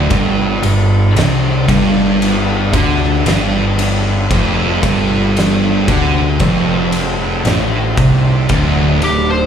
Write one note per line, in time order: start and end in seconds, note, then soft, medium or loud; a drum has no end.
0.00 8.46 G3 medium
0.00 4.26 D4 medium
0.10 0.60 G1 loud
0.10 0.61 G2 loud
0.10 8.45 A4 medium
0.10 kick loud
0.10 ride medium
0.63 1.13 G1 medium
0.63 1.05 G2 medium
0.63 ride medium
1.17 1.65 C2 medium
1.17 1.67 C3 loud
1.17 snare loud
1.17 ride loud
1.68 2.69 G1 loud
1.68 2.72 G2 loud
1.68 kick loud
1.68 ride medium
2.22 ride loud
2.72 3.22 D2 loud
2.72 3.23 D3 loud
2.72 kick loud
2.72 ride medium
3.24 4.27 G1 loud
3.24 4.28 G2 loud
3.24 ride loud
3.28 snare loud
3.79 ride medium
4.28 4.79 F1 loud
4.28 4.81 F2 loud
4.28 8.45 C4 medium
4.28 kick loud
4.28 ride loud
4.81 5.84 G1 medium
4.81 5.85 G2 loud
4.81 kick loud
4.81 ride medium
5.37 snare loud
5.37 ride loud
5.87 6.37 D2 loud
5.87 6.38 D3 loud
5.87 kick loud
5.87 ride medium
6.39 7.41 F1 loud
6.39 7.43 F2 loud
6.39 kick loud
6.39 ride medium
6.92 ride medium
7.44 7.94 A1 medium
7.44 7.95 A2 loud
7.44 snare loud
7.44 ride medium
7.96 8.46 C2 loud
7.96 8.48 C3 loud
7.96 kick loud
7.96 ride medium
8.48 8.99 D1 loud
8.48 9.00 D2 loud
8.48 9.46 A3 medium
8.48 kick loud
8.48 ride medium
8.52 9.02 D2 loud
8.52 9.46 D3 medium
8.52 9.46 D4 medium
9.02 9.46 D1 medium
9.02 9.44 D2 medium
9.02 9.29 G4 medium
9.02 ride medium
9.30 9.46 C5 medium